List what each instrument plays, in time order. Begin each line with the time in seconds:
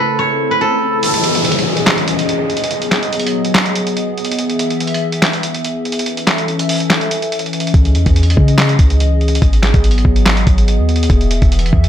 Already playing: analog synth pad C#3 A3 E4 A4, guzheng A4 C#5 D#5, swell
0.00 guzheng B4
0.19 guzheng C#5
0.51 guzheng B4
0.61 guzheng A4
1.03 analog synth pad E3 C#4 G#4 D#5, closed hi-hat, downlifter
1.14 closed hi-hat
1.24 closed hi-hat
1.35 closed hi-hat
1.45 closed hi-hat
1.52 closed hi-hat
1.59 closed hi-hat
1.77 closed hi-hat
1.87 snare, clap, closed hi-hat
1.98 closed hi-hat
2.08 closed hi-hat
2.19 closed hi-hat
2.29 closed hi-hat
2.50 closed hi-hat
2.57 closed hi-hat
2.64 closed hi-hat
2.71 analog synth pad F#3 B3, closed hi-hat
2.82 closed hi-hat
2.92 snare, clap, closed hi-hat
3.03 closed hi-hat
3.13 closed hi-hat
3.20 closed hi-hat
3.27 closed hi-hat
3.45 closed hi-hat
3.55 snare, clap, closed hi-hat
3.66 closed hi-hat
3.76 closed hi-hat
3.87 closed hi-hat
3.97 closed hi-hat
4.18 closed hi-hat
4.25 closed hi-hat
4.32 closed hi-hat
4.39 analog synth pad E3 E5, closed hi-hat
4.50 closed hi-hat
4.59 closed hi-hat
4.71 closed hi-hat
4.80 closed hi-hat
4.87 closed hi-hat
4.94 closed hi-hat
5.12 closed hi-hat
5.22 snare, clap, closed hi-hat
5.33 closed hi-hat
5.43 closed hi-hat
5.55 closed hi-hat
5.65 closed hi-hat
5.85 closed hi-hat
5.92 closed hi-hat
5.99 closed hi-hat
6.06 analog synth pad C#4 A4 E5, closed hi-hat
6.17 closed hi-hat
6.27 snare, clap, closed hi-hat
6.38 closed hi-hat
6.48 closed hi-hat
6.59 closed hi-hat
6.69 open hi-hat
6.80 closed hi-hat
6.90 snare, clap, closed hi-hat
7.01 closed hi-hat
7.11 closed hi-hat
7.22 closed hi-hat
7.32 closed hi-hat
7.39 closed hi-hat
7.46 closed hi-hat
7.53 closed hi-hat
7.60 closed hi-hat
7.67 closed hi-hat
7.74 808-style bass C#2, analog synth pad G#4 D#5, kick, closed hi-hat
7.85 closed hi-hat
7.95 808-style bass E2, closed hi-hat
8.06 808-style bass E2, kick, closed hi-hat
8.16 closed hi-hat
8.23 closed hi-hat
8.30 closed hi-hat
8.37 808-style bass C#3, kick
8.48 closed hi-hat
8.58 snare, clap, closed hi-hat
8.69 closed hi-hat
8.79 808-style bass C#2, kick, closed hi-hat
8.90 closed hi-hat
9.00 closed hi-hat
9.21 closed hi-hat
9.28 closed hi-hat
9.35 closed hi-hat
9.42 808-style bass G#1, analog synth pad F#3 B3, kick, closed hi-hat
9.53 closed hi-hat
9.63 snare, clap, closed hi-hat
9.74 808-style bass G#1, kick, closed hi-hat
9.84 closed hi-hat
9.91 closed hi-hat
9.98 closed hi-hat
10.05 808-style bass G#1, kick
10.16 closed hi-hat
10.26 snare, clap, closed hi-hat
10.37 closed hi-hat
10.47 808-style bass G#1, kick, closed hi-hat
10.58 closed hi-hat
10.68 closed hi-hat
10.79 808-style bass D#2
10.89 closed hi-hat
10.96 closed hi-hat
11.03 closed hi-hat
11.10 808-style bass E1, analog synth pad E3 E5, kick, closed hi-hat
11.21 closed hi-hat
11.31 closed hi-hat
11.42 808-style bass E1, kick, closed hi-hat
11.52 closed hi-hat
11.59 closed hi-hat
11.66 closed hi-hat
11.73 808-style bass E2, kick
11.84 closed hi-hat